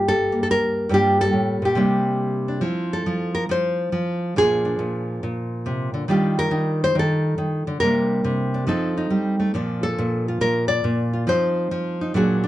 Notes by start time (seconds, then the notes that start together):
Already playing: G2 G3 A#3
0.08 A4
0.32 A#3
0.43 A4
0.51 A#4
0.89 G2 G3 A#3 F4
0.94 G4
1.21 A4
1.33 A2
1.62 A#2 G4
1.75 C3 G3 A#3 D4
2.48 D4
2.61 F3 C4 E4
2.93 A4
3.06 F3
3.35 A#4
3.49 F3 C5
3.92 F3
4.36 A#2 F3 D4 F4 G#4
4.65 D4
4.79 A#2
5.23 A#2
5.66 C3
5.94 D3
6.08 D#3 G3 D4 F4 G4
6.39 A#4
6.51 D#3
6.84 C5
6.95 D#3
6.99 A4
7.38 D#3
7.67 D3
7.80 C3 G3 A#3 A#4
7.84 D4
8.24 C3
8.54 D4
8.67 F3 C4 D#4 A4
8.97 D#4
9.10 G3
9.40 A3
9.54 A#2 F3 D4 F4
9.83 A4
9.98 A#2
10.28 F4
10.41 A#2 A#4
10.68 D5
10.84 A#2
11.13 F4
11.27 F3 C4 D#4 C5
11.71 F3
12.01 D#4
12.14 A#2 F#3 D4 F#4 G#4
12.44 D4